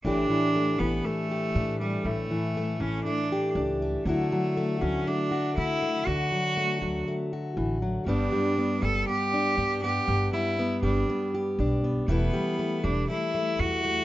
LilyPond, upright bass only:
\new Staff \with { instrumentName = "Upright bass" } { \clef bass \time 4/4 \key d \major \tempo 4 = 120 a,,8 r4 a,,8 r4 a,4 | a,,8 r4 a,,8 r4 cis,4 | d,8 r4 d,8 r4 d4 | d,8 r4 d,8 r4 a,,4 |
g,,8 r4 g,,8 r4 g,4 | g,,8 r4 g,,8 r4 b,,4 | e,,8 r4 e,,8 r4 e,4 | }